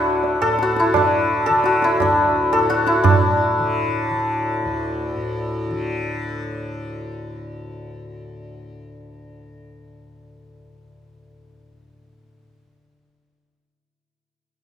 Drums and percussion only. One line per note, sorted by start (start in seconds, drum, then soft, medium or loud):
0.24 tabla tin medium
0.42 tabla na medium
0.59 tabla te medium
0.77 tabla te medium
0.94 tabla na loud
0.94 tabla ge loud
1.47 tabla na medium
1.64 tabla te medium
1.82 tabla te medium
2.00 tabla na loud
2.00 tabla ge loud
2.53 tabla na medium
2.70 tabla te medium
2.87 tabla te medium
3.04 tabla na loud
3.04 tabla ge loud